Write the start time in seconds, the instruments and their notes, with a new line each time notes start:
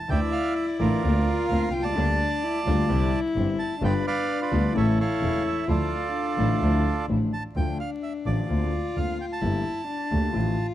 0.08 grand piano D2 D3 E3 A3 E4, double bass D2, string section A3 D4 E4, cello E4, bandoneon D5 E5 G5
0.32 bandoneon F5
0.56 bandoneon E5
0.79 grand piano A1 A2 D3 E3 A3 E4, double bass A1, string section A3 D4 E4, bandoneon F4 A#4 D5
1.03 grand piano D2 D3 A#3 C4 F4, double bass D2, string section A#3 C4 D4, cello F4
1.48 double bass D2, grand piano D2 D3 A#3 C4 F4, string section A#3 C4 D4, bandoneon F5
1.71 double bass C2, bandoneon G5
1.79 grand piano B1, bandoneon A5
1.85 grand piano C2, bandoneon D5
1.91 grand piano C#2
1.96 grand piano D2 D3 G3 A#3 G4, double bass D2, string section G3 A#3 D4, cello D4
2.44 cello E4
2.66 double bass D2, grand piano D2 D3 G3 A#3 G4, string section G3 A#3 D4, cello F4
2.89 grand piano C2 C3 D3 G3 C4 G4, double bass C2, string section G3 C4 D4, cello E4
3.36 double bass G1, grand piano G1 G2 D3 G3 C4 G4, string section G3 C4 D4
3.59 bandoneon A5
3.82 grand piano G1 G2 D3 G3 B3 F4, double bass G1, string section G3 B3 F4, cello D4, bandoneon B4 D5 G5
4.07 bandoneon B4 D5 F5
4.42 bandoneon F4 B4 D5
4.51 grand piano D2 D3 G3 B3 F4, double bass D2, string section G3 B3 F4
4.74 double bass A1, grand piano A1 A2 C#3 E3 A3 E4, string section A3 C#4 E4, cello E4, bandoneon A4 C#5 E5
5.00 bandoneon A4 C#5 F5
5.21 double bass E1, grand piano E1 E2 C#3 E3 A3 E4, string section A3 C#4 E4
5.47 bandoneon E5
5.68 grand piano D2 D3 F3 A3 E4, double bass D2, string section F3 D4 E4, cello F4, bandoneon F4 A4 D5
6.15 cello D4
6.38 double bass A1, grand piano A1 A2 D3 F3 A3 E4, string section F3 D4 E4
6.61 double bass D2, grand piano D2 D3 F3 A3 E4, string section F3 D4 E4
7.09 double bass A1, grand piano A1 A2 D3 F3 A3 E4, string section F3 D4 E4
7.33 bandoneon A5
7.55 double bass D2, grand piano D2 D3 F3 A3 F4, cello D4, bandoneon G5
7.80 bandoneon F5
8.03 bandoneon E5
8.25 double bass A1, grand piano A1 A2 D3 F3 A3 F4, bandoneon D5
8.49 double bass D2, grand piano D2 D3 A#3 C4 F4, cello F4
8.96 double bass D2, grand piano D2 D3 A#3 C4 F4, bandoneon F5
9.21 bandoneon G5
9.32 bandoneon A5
9.41 grand piano G1 G2 D3 A3 A#3 G4, double bass G1, cello E4
9.88 cello D4
10.11 grand piano D2 D3 A3 A#3 G4, double bass D2
10.33 grand piano A1 A2 D3 F3 A3 E4, double bass A1, cello F4